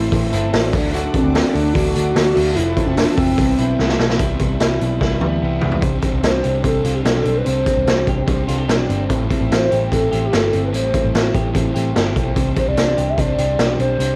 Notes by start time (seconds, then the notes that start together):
Already playing: A2 A3 C4 E4 A4 C5 E5 C6
0.12 A1 E3 A3 C4 E4 A4, kick, hi-hat pedal, open hi-hat
0.32 G1 C4 E4 A4 A5, hi-hat pedal, open hi-hat
0.36 A3
0.52 A1 A2 E3 A3 C4 E4 C5 D5, snare, hi-hat pedal, open hi-hat
0.71 D2 F#3 A3 D4 F#4 A4 D5 F#5 D6, kick, hi-hat pedal, open hi-hat
0.76 D3
0.94 D3 F#4, hi-hat pedal, open hi-hat
1.12 C4 D4 F#4 A4, kick, hi-hat pedal, open hi-hat
1.24 D2
1.33 D3 F#3 A3 D4 F#4 C5, snare, hi-hat pedal, open hi-hat
1.53 D2 A3 D4 F#4 A4, hi-hat pedal, open hi-hat
1.58 F#3
1.73 D2 D3 F#3 A3 D4 F#4 A4, kick, hi-hat pedal, open hi-hat
1.78 D4
1.94 D2 F#3 A3 D4 F#4 A4, hi-hat pedal, open hi-hat
2.15 D2 D3 F#3 A3 D4 F#4 A4, snare, hi-hat pedal, open hi-hat
2.35 D2 A3 D4 F#4 A4, hi-hat pedal, open hi-hat
2.54 F1 F2 C3 E3 F3 E4 F4 A4 E5 A5, hi-hat pedal, open hi-hat
2.58 A3 C4
2.76 C4 E4 F4 A4, kick, hi-hat pedal, open hi-hat
2.86 F1 C4
2.95 F2 C3 E3 A3 D4 E4 F4 A4, snare, hi-hat pedal, open hi-hat
2.99 C4
3.16 F1 A3 C4 E4 F4 A4, kick, hi-hat pedal, open hi-hat
3.20 E3
3.37 C2 C3 G3 B3 C4 E4 B4 G5, kick, hi-hat pedal, open hi-hat
3.41 E4
3.57 B1 G3 B3 C4 E4 B4, hi-hat pedal, open hi-hat
3.78 C2 C3 G3 B3 C4 E4 B4, snare
3.89 snare
3.99 B1 G3 C4 E4 B4, snare
4.10 snare
4.19 C2 C3 G3 B3 E4, kick, closed hi-hat
4.39 C2 G3, kick, closed hi-hat
4.60 C2 C3 G3 B3 E4, snare, closed hi-hat
4.81 B1 G3, closed hi-hat
5.01 C2 C3 G3 B3 E4, kick, snare
5.21 D2 G3 B3 E4, high tom
5.25 G3
5.42 C2 C3 G3 B3 E4
5.61 C2 G3 B3 E4, floor tom
5.72 floor tom
5.82 C2 C3 G3 C4 D4 G4 C5, kick, closed hi-hat
6.02 G3 C4 D4 G4 C5, kick, closed hi-hat
6.13 C2
6.22 C2 D4 G4 C5, snare, closed hi-hat
6.42 C2 C4 D4 G4 C5, closed hi-hat
6.46 G3
6.62 C2 C3 G3 C4 D4 G4 A4 C5, kick, closed hi-hat
6.84 C2 G3 C4 D4 F4 G4 C5, closed hi-hat
6.95 G4
7.03 B1 C3 G3 C4 D4 G4 A4 C5, snare, closed hi-hat
7.07 D4
7.25 B1 G3 C4 D4 G4 C5, closed hi-hat
7.37 B4
7.44 C2 C3 G3 C4 D4 G4 C5, closed hi-hat
7.65 G3 C4 D4 G4 C5, kick, closed hi-hat
7.77 C2
7.86 C2 C4 D4 G4 C5, snare, closed hi-hat
7.98 D4
8.06 C2 D4 G4 C5, kick, closed hi-hat
8.26 C2 C3 G3 C4 D4 G4 C5, kick, closed hi-hat
8.46 C2 G3 C4 D4 F4 G4 A4, closed hi-hat
8.58 G4
8.67 B1 C3 G3 C4 D4 G4 C5, snare, closed hi-hat
8.88 G1 G3 C4 D4 G4 C5, closed hi-hat
9.09 A1 A2 E3 G3 C4 E4 G4 A4, kick, closed hi-hat
9.30 G3 C4 E4 G4 A4, kick, closed hi-hat
9.41 A1
9.50 A1 C4 E4 G4 A4 C5, snare, closed hi-hat
9.71 A1 G3 C4 E4 G4 A4, closed hi-hat
9.91 A1 A2 E3 G3 C4 E4 G4 A4, kick, closed hi-hat
10.11 A1 G3 C4 E4 G4 C5, closed hi-hat
10.25 G4
10.32 G1 E3 G3 C4 E4 G4 A4, snare, closed hi-hat
10.52 G1 G3 C4 E4 G4 A4, closed hi-hat
10.65 B4
10.72 A1 A2 E3 G3 C4 E4 G4 A4 C5, closed hi-hat
10.93 G3 C4 E4 G4 A4, kick, closed hi-hat
11.04 A1
11.14 A1 C4 E4 G4 A4, snare, closed hi-hat
11.33 A1 G3 C4 E4 G4 A4, kick, closed hi-hat
11.54 A1 A2 E3 G3 C4 E4 G4 A4, kick, closed hi-hat
11.74 A1 G3 C4 E4 G4 A4, closed hi-hat
11.95 G1 E3 G3 C4 D4 E4 G4 A4, snare, closed hi-hat
12.05 E4
12.15 B1 C4 E4 G4 A4, kick, closed hi-hat
12.19 G3
12.34 C2 C3 G3 C4 D4 G4 C5, kick, closed hi-hat
12.38 D4
12.55 C4 D4 G4 C5, kick, closed hi-hat
12.61 G3
12.68 C2 D5
12.75 C2 D4 G4 C5, snare, closed hi-hat
12.95 C2 D4 G4 C5, closed hi-hat
13.10 E5
13.17 C2 C3 G3 C4 D4 G4 C5 D5, kick, closed hi-hat
13.37 C2 C4 D4 G4 C5, closed hi-hat
13.41 G3
13.58 B1 C3 G3 C4 D4 G4 C5, snare, closed hi-hat
13.77 B1 C4 D4 G4 C5, closed hi-hat
13.81 G3
13.99 C2 C3 G3 C4 D4 G4 C5, closed hi-hat